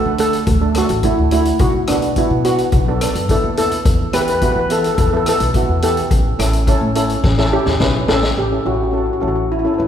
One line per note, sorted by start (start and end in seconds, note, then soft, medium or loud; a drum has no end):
0.00 0.19 A4 medium
0.05 0.37 D3 medium
0.18 0.44 A3 medium
0.18 0.45 D4 medium
0.18 0.45 A4 medium
0.18 0.72 A4 loud
0.18 closed hi-hat medium
0.33 closed hi-hat medium
0.47 0.79 D2 loud
0.47 kick loud
0.47 closed hi-hat medium
0.61 0.70 A3 medium
0.61 0.70 D4 medium
0.61 0.70 A4 medium
0.75 0.92 A3 medium
0.75 0.93 D4 medium
0.75 1.03 F#4 medium
0.75 0.93 A4 medium
0.75 cross-stick loud
0.75 closed hi-hat medium
0.89 1.11 A1 loud
0.89 closed hi-hat medium
1.03 1.21 A3 medium
1.03 1.21 D4 medium
1.03 1.31 E4 medium
1.03 1.21 F#4 medium
1.03 kick medium
1.03 closed hi-hat medium
1.18 1.50 D2 medium
1.31 1.60 A3 medium
1.31 1.60 D4 medium
1.31 1.58 E4 loud
1.31 1.61 F#4 medium
1.31 closed hi-hat medium
1.45 closed hi-hat medium
1.59 1.81 B1 medium
1.59 1.73 F#4 medium
1.59 kick loud
1.59 closed hi-hat medium
1.87 2.21 B1 medium
1.87 2.05 B3 medium
1.87 2.14 D4 medium
1.87 2.06 D4 medium
1.87 2.06 F#4 medium
1.87 cross-stick medium
1.87 closed hi-hat medium
2.02 closed hi-hat medium
2.16 2.34 B3 medium
2.16 2.34 D4 medium
2.16 2.46 E4 medium
2.16 2.34 F#4 medium
2.16 kick medium
2.16 closed hi-hat medium
2.31 2.62 B2 medium
2.45 2.70 B3 medium
2.45 2.70 D4 medium
2.45 3.25 F#4 medium
2.45 2.70 F#4 medium
2.45 closed hi-hat medium
2.58 closed hi-hat medium
2.72 3.05 B1 medium
2.72 kick loud
2.72 closed hi-hat medium
2.88 2.96 B3 medium
2.88 2.96 D4 medium
2.88 2.96 A4 medium
3.01 3.19 B3 medium
3.01 3.19 D4 medium
3.01 3.19 A4 medium
3.01 cross-stick loud
3.01 closed hi-hat loud
3.15 3.36 F#2 loud
3.15 closed hi-hat medium
3.29 3.47 B3 medium
3.29 3.47 D4 medium
3.29 3.47 E4 medium
3.29 3.57 A4 loud
3.29 kick medium
3.29 closed hi-hat medium
3.44 3.75 D#2 medium
3.57 3.86 B3 medium
3.57 3.86 D4 medium
3.57 3.86 E4 medium
3.57 4.16 A4 loud
3.57 closed hi-hat medium
3.71 closed hi-hat medium
3.85 4.07 E2 medium
3.85 kick loud
3.85 closed hi-hat medium
4.13 4.45 E2 medium
4.13 4.30 B3 medium
4.13 4.31 E4 medium
4.13 4.31 G4 medium
4.13 4.21 B4 loud
4.13 cross-stick loud
4.13 closed hi-hat medium
4.22 4.28 B4 medium
4.28 4.34 B4 medium
4.28 closed hi-hat medium
4.35 4.43 B4 medium
4.42 4.59 B3 medium
4.42 4.59 E4 medium
4.42 4.59 F#4 medium
4.42 4.51 B4 medium
4.42 kick medium
4.42 closed hi-hat medium
4.52 4.87 E3 medium
4.52 4.58 B4 medium
4.60 4.67 B4 medium
4.70 4.96 B3 medium
4.70 4.96 E4 medium
4.70 4.96 A4 medium
4.70 4.77 A4 medium
4.70 closed hi-hat medium
4.79 4.85 A4 medium
4.84 4.93 A4 medium
4.84 closed hi-hat medium
4.95 5.30 E2 medium
4.95 4.99 A4 medium
4.95 kick loud
4.95 closed hi-hat medium
5.01 5.07 A4 medium
5.10 5.21 B3 medium
5.10 5.21 E4 medium
5.10 5.16 A4 medium
5.10 5.21 A4 medium
5.17 5.23 A4 medium
5.26 5.44 B3 medium
5.26 5.44 E4 medium
5.26 5.44 A4 medium
5.26 5.82 A4 loud
5.26 cross-stick medium
5.26 closed hi-hat medium
5.40 5.62 B1 medium
5.40 closed hi-hat medium
5.54 5.72 B3 medium
5.54 5.72 E4 medium
5.54 5.72 F#4 medium
5.54 kick medium
5.54 closed hi-hat medium
5.69 6.00 E2 medium
5.82 6.11 B3 medium
5.82 6.11 E4 medium
5.82 6.11 G4 medium
5.82 7.77 A4 medium
5.82 closed hi-hat medium
5.97 closed hi-hat medium
6.11 6.32 A1 medium
6.11 kick loud
6.11 closed hi-hat medium
6.39 6.71 A1 medium
6.39 6.56 C#4 medium
6.39 6.56 E4 medium
6.39 6.56 A4 medium
6.39 cross-stick medium
6.39 closed hi-hat medium
6.53 closed hi-hat medium
6.67 6.85 C#4 medium
6.67 6.85 E4 medium
6.67 6.85 A4 loud
6.67 kick medium
6.67 closed hi-hat medium
6.81 7.13 A2 medium
6.95 7.21 C#4 medium
6.95 7.21 E4 medium
6.95 7.21 A4 loud
6.95 closed hi-hat medium
7.10 closed hi-hat medium
7.24 7.56 A1 loud
7.24 kick loud
7.24 snare medium
7.38 7.47 C#4 medium
7.38 7.47 E4 medium
7.38 7.47 A4 loud
7.38 snare medium
7.53 7.69 C#4 medium
7.53 7.69 E4 medium
7.53 8.05 G4 loud
7.53 7.69 A4 medium
7.66 7.77 E2 medium
7.66 snare medium
7.80 8.06 B1 loud
7.80 7.98 C#4 medium
7.80 7.98 E4 medium
7.80 7.98 B4 loud
7.80 kick medium
7.80 snare medium
8.08 8.34 A1 medium
8.08 8.37 C#4 medium
8.08 8.37 E4 medium
8.08 8.38 A4 loud
8.08 8.37 A4 medium
8.08 snare loud
8.23 snare loud
8.37 8.58 A1 medium
8.37 8.67 G4 medium
8.52 8.60 C#4 medium
8.52 8.60 E4 medium
8.52 8.60 A4 medium
8.65 9.08 A1 medium
8.65 8.82 C#4 medium
8.65 8.82 E4 medium
8.65 8.72 F#4 medium
8.65 8.82 G4 medium
8.74 8.80 F#4 medium
8.83 8.89 F#4 medium
8.91 9.10 C#4 medium
8.91 9.10 E4 medium
8.91 8.96 F#4 medium
8.91 9.10 A4 medium
8.98 9.03 F#4 medium
9.06 9.11 F#4 medium
9.13 9.19 F#4 medium
9.20 9.65 A1 medium
9.20 9.47 C#4 medium
9.20 9.47 E4 medium
9.20 9.26 F#4 medium
9.20 9.47 A4 medium
9.28 9.33 F#4 medium
9.36 9.41 F#4 medium
9.52 9.58 E4 medium
9.59 9.66 E4 medium
9.65 9.73 C#4 medium
9.65 9.73 E4 medium
9.65 9.73 A4 medium
9.74 9.81 E4 medium
9.78 9.88 A1 medium
9.78 9.88 C#4 medium
9.78 9.88 E4 medium
9.78 9.88 B4 medium
9.82 9.88 E4 medium